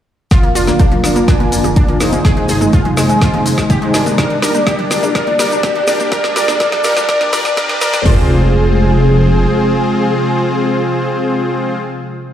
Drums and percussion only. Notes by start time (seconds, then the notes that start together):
0.31 kick, snare, closed hi-hat, high bongo, shaker
0.43 closed hi-hat
0.55 open hi-hat, shaker
0.67 snare, closed hi-hat, high conga, shaker
0.79 kick, closed hi-hat, high bongo, shaker
0.92 closed hi-hat, low conga
1.04 snare, open hi-hat, shaker
1.16 closed hi-hat, high bongo, shaker
1.28 kick, snare, closed hi-hat, shaker
1.40 closed hi-hat, high conga
1.52 open hi-hat, shaker
1.64 closed hi-hat, high bongo, shaker
1.76 kick, closed hi-hat, high conga, shaker
1.88 closed hi-hat
2.00 snare, open hi-hat, high bongo, shaker
2.12 closed hi-hat, high conga, shaker
2.25 kick, snare, closed hi-hat, shaker
2.37 closed hi-hat
2.48 open hi-hat, high bongo, shaker
2.61 closed hi-hat, high conga, shaker
2.73 kick, closed hi-hat, shaker
2.85 closed hi-hat, high bongo, low conga
2.97 snare, open hi-hat, high conga, shaker
3.09 closed hi-hat, shaker
3.22 kick, snare, closed hi-hat, shaker
3.33 closed hi-hat, high bongo, high conga
3.46 open hi-hat, shaker
3.58 kick, snare, closed hi-hat, shaker
3.70 kick, closed hi-hat, high bongo, high conga, shaker
3.82 closed hi-hat
3.94 snare, open hi-hat, shaker
4.06 closed hi-hat, high conga, shaker
4.18 kick, snare, closed hi-hat, high bongo, shaker
4.30 closed hi-hat
4.42 snare, open hi-hat, shaker
4.55 closed hi-hat, high bongo, high conga, shaker
4.67 kick, snare, closed hi-hat, shaker
4.79 closed hi-hat, low conga
4.90 snare, open hi-hat, high conga, shaker
5.03 closed hi-hat, high bongo, shaker
5.15 kick, snare, closed hi-hat, shaker
5.27 closed hi-hat, high conga
5.39 snare, open hi-hat, high bongo, shaker
5.51 closed hi-hat, shaker
5.63 kick, snare, closed hi-hat, high conga, shaker
5.75 closed hi-hat
5.87 snare, open hi-hat, high bongo, shaker
6.00 closed hi-hat, high conga, shaker
6.12 kick, snare, closed hi-hat, shaker
6.24 snare, closed hi-hat, high bongo
6.36 snare, open hi-hat, shaker
6.48 snare, closed hi-hat, high conga, shaker
6.60 kick, snare, closed hi-hat, shaker
6.72 snare, closed hi-hat, high bongo, low conga
6.84 snare, open hi-hat, shaker
6.97 snare, closed hi-hat, shaker
7.09 kick, snare, closed hi-hat, high bongo, shaker
7.21 snare, closed hi-hat, high conga
7.33 snare, open hi-hat, shaker
7.45 kick, snare, shaker
7.56 kick, snare, closed hi-hat, high bongo, high conga, shaker
7.69 snare, closed hi-hat
7.81 snare, open hi-hat, shaker
7.93 snare, closed hi-hat, high bongo, high conga, shaker
8.06 kick, floor tom, open hi-hat